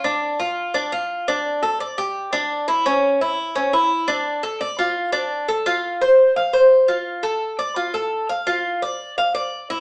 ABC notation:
X:1
M:4/4
L:1/8
Q:1/4=171
K:Dm
V:1 name="Cuban tres"
D2 F2 D F2 D- | D A d G2 D2 E | ^C2 E2 C E2 D- | D A d F2 D2 A |
F2 c2 f c2 F- | F A2 d F A2 f | F2 d2 f d2 E |]